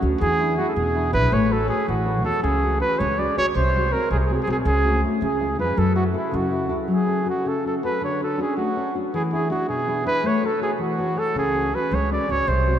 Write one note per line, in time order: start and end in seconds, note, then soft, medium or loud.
0.01 0.14 D2 medium
0.01 0.16 C#4 soft
0.01 0.16 D4 soft
0.01 0.17 F#4 medium
0.20 0.57 E2 medium
0.20 0.56 E3 medium
0.20 0.55 G#4 medium
0.40 0.58 D4 soft
0.40 0.58 E4 soft
0.40 0.58 G#4 soft
0.55 0.88 D4 soft
0.55 0.88 E4 soft
0.55 0.68 F#4 medium
0.55 0.59 G#4 medium
0.55 0.88 G#4 medium
0.68 0.76 A4 medium
0.75 1.15 E2 medium
0.75 1.12 B2 medium
0.75 1.13 G#4 medium
0.95 1.12 D4 soft
0.95 1.12 E4 soft
0.95 1.13 G#4 soft
1.13 1.25 B1 medium
1.13 1.28 D4 soft
1.13 1.28 E4 soft
1.13 1.28 G#4 medium
1.13 1.35 B4 loud
1.32 1.68 A1 medium
1.32 1.68 A3 medium
1.32 1.53 C#5 medium
1.50 1.67 F#4 soft
1.50 1.67 A4 soft
1.50 1.68 A4 medium
1.50 1.67 C#5 soft
1.68 1.98 F#4 soft
1.68 1.86 G#4 medium
1.68 1.99 A4 soft
1.68 1.99 C#5 soft
1.88 2.26 A1 medium
1.88 2.24 E3 medium
1.88 2.23 F#4 medium
2.05 2.23 F#4 soft
2.05 2.24 A4 soft
2.05 2.24 C#5 soft
2.25 2.37 E2 medium
2.25 2.39 F#4 soft
2.25 2.42 A4 medium
2.25 2.40 A4 soft
2.25 2.40 C#5 soft
2.43 2.80 C#2 medium
2.43 2.80 C#3 medium
2.43 2.78 G#4 medium
2.62 2.80 C#4 soft
2.62 2.80 F#4 soft
2.62 2.80 G#4 soft
2.81 3.11 C#4 soft
2.81 3.11 F#4 soft
2.81 3.11 G#4 soft
2.81 3.00 B4 medium
2.99 3.24 C#2 medium
2.99 3.36 G#3 medium
2.99 3.20 C#5 medium
3.18 3.36 C#4 soft
3.18 3.37 F#4 soft
3.18 3.37 G#4 soft
3.18 3.37 D5 medium
3.37 3.49 C#2 medium
3.37 3.52 C#4 soft
3.37 3.52 F#4 soft
3.37 3.52 G#4 soft
3.37 3.46 C#5 loud
3.55 3.91 C2 medium
3.55 3.92 C3 medium
3.55 3.94 C5 medium
3.76 3.92 G#3 soft
3.76 3.92 C4 soft
3.76 3.93 F#4 soft
3.92 4.23 G#3 soft
3.92 4.23 C4 soft
3.92 4.23 F#4 soft
3.92 4.11 A#4 medium
4.11 4.35 C2 medium
4.11 4.47 C3 medium
4.11 4.18 G#4 medium
4.19 4.25 G#4 soft
4.26 4.47 G#3 soft
4.26 4.33 G#4 medium
4.30 4.47 C4 soft
4.30 4.47 F#4 soft
4.30 4.41 G#4 medium
4.42 4.49 G#4 medium
4.47 4.59 C2 medium
4.47 4.63 G#3 soft
4.47 4.63 C4 soft
4.47 4.63 F#4 medium
4.47 4.57 G#4 medium
4.65 5.02 C#2 medium
4.65 5.03 C#3 medium
4.65 5.01 G#4 medium
4.84 5.02 A3 soft
4.84 5.03 C#4 soft
4.84 5.03 F#4 soft
5.04 5.18 A3 soft
5.04 5.18 C#4 soft
5.04 5.19 F#4 medium
5.22 5.60 C#2 medium
5.22 5.58 C#3 medium
5.22 5.57 G#4 medium
5.40 5.57 G#3 soft
5.40 5.57 C#4 soft
5.40 5.58 F4 soft
5.59 5.71 F2 medium
5.59 5.73 G#3 soft
5.59 5.73 C#4 soft
5.59 5.74 F4 soft
5.59 5.80 B4 medium
5.76 6.14 F#2 medium
5.76 6.13 F#3 medium
5.76 5.95 A4 medium
5.95 6.12 E4 soft
5.95 6.12 F#4 soft
5.95 6.04 F#4 medium
5.95 6.13 A4 soft
6.13 6.44 E4 soft
6.13 6.36 E4 medium
6.13 6.44 F#4 soft
6.13 6.44 A4 soft
6.32 6.72 F#2 medium
6.32 6.69 C#3 medium
6.32 6.77 F#4 medium
6.50 6.68 E4 soft
6.50 6.68 F#4 soft
6.50 6.68 A4 soft
6.69 6.84 C#2 medium
6.69 6.85 E4 soft
6.69 6.85 F#4 soft
6.69 6.85 A4 medium
6.88 7.25 F#3 medium
6.93 7.26 G#4 medium
7.07 7.24 C#4 soft
7.07 7.24 F#4 soft
7.07 7.25 A4 soft
7.25 7.56 C#4 soft
7.25 7.56 F#4 soft
7.25 7.56 A4 soft
7.30 7.49 F#4 medium
7.45 7.82 C#3 medium
7.45 7.66 A4 medium
7.65 7.82 C#4 soft
7.65 7.82 F#4 soft
7.65 7.83 A4 soft
7.65 7.75 A4 medium
7.83 7.98 C#4 soft
7.83 7.98 F#4 soft
7.83 7.98 A4 medium
7.83 8.01 B4 medium
8.01 8.38 D3 medium
8.01 8.20 C#5 medium
8.21 8.37 C#4 soft
8.21 8.37 D4 soft
8.21 8.38 F#4 soft
8.21 8.39 A4 medium
8.38 8.68 C#4 soft
8.38 8.68 D4 soft
8.38 8.69 F#4 soft
8.38 8.56 G#4 medium
8.57 8.93 A3 soft
8.57 8.96 F#4 medium
8.77 8.93 C#4 soft
8.77 8.94 D4 soft
8.77 8.94 F#4 soft
8.95 9.09 C#4 soft
8.95 9.09 D4 soft
8.95 9.10 F#4 medium
9.14 9.49 E3 medium
9.14 9.23 G#4 medium
9.32 9.49 D4 soft
9.32 9.49 E4 soft
9.32 9.49 G#4 medium
9.32 9.50 G#4 soft
9.50 9.79 D4 soft
9.50 9.80 E4 soft
9.50 9.67 F#4 medium
9.50 9.80 G#4 medium
9.69 10.04 B2 medium
9.69 10.03 G#4 medium
9.87 10.03 D4 soft
9.87 10.04 E4 soft
9.87 10.04 G#4 soft
10.04 10.19 D4 soft
10.04 10.20 E4 soft
10.04 10.20 G#4 medium
10.04 10.28 B4 loud
10.23 10.60 A3 medium
10.23 10.47 C#5 medium
10.42 10.59 F#4 soft
10.42 10.60 A4 soft
10.42 10.62 A4 medium
10.42 10.61 C#5 soft
10.60 10.91 F#4 soft
10.60 10.71 G#4 medium
10.60 10.91 A4 soft
10.60 10.92 C#5 soft
10.79 11.16 E3 soft
10.79 11.20 F#4 medium
10.98 11.15 F#4 soft
10.98 11.15 A4 soft
10.98 11.16 C#5 soft
11.16 11.31 F#4 soft
11.16 11.31 A4 soft
11.16 11.37 A4 medium
11.16 11.32 C#5 soft
11.35 11.72 C#2 medium
11.35 11.72 C#3 medium
11.35 11.76 G#4 medium
11.54 11.72 C#4 soft
11.54 11.73 F#4 soft
11.54 11.73 G#4 soft
11.74 12.04 F#4 soft
11.74 12.04 G#4 soft
11.74 11.96 B4 medium
11.91 12.16 C#2 medium
11.91 12.28 G#3 medium
11.91 12.12 C#5 medium
12.11 12.28 C#4 soft
12.11 12.28 F#4 soft
12.11 12.29 G#4 soft
12.11 12.32 D5 medium
12.29 12.41 C#2 medium
12.29 12.44 C#4 soft
12.29 12.44 F#4 soft
12.29 12.45 G#4 soft
12.29 12.50 C#5 loud
12.47 12.79 C2 medium
12.47 12.79 C3 medium
12.47 12.79 C5 medium
12.66 12.79 G#3 soft
12.66 12.79 C4 soft
12.66 12.79 F#4 soft